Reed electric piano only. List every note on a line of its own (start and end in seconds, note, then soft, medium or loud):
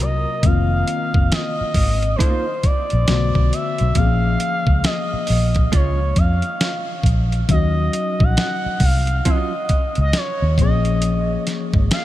0.00 0.44 C3 soft
0.00 0.44 F#3 soft
0.00 0.45 A#3 soft
0.00 0.45 F#4 soft
0.43 3.04 D#3 medium
0.43 0.52 G#3 soft
0.43 3.05 C4 medium
0.47 3.08 A#3 medium
0.47 3.06 F4 medium
3.08 3.16 C#3 soft
3.08 3.97 A3 medium
3.08 3.97 B3 medium
3.08 3.97 F#4 medium
3.14 3.99 D3 medium
3.95 7.45 F3 medium
3.95 7.45 A#3 medium
3.95 4.05 C4 soft
4.00 7.47 G#4 medium
4.05 7.49 C#4 medium
7.49 10.54 F#3 medium
7.49 10.54 C#4 medium
7.49 10.55 D#4 medium
7.53 10.56 F#4 medium
10.58 12.05 F3 medium
10.58 12.05 A#3 medium
10.58 10.68 C4 soft
10.62 12.05 G#4 medium
10.67 12.05 C#4 medium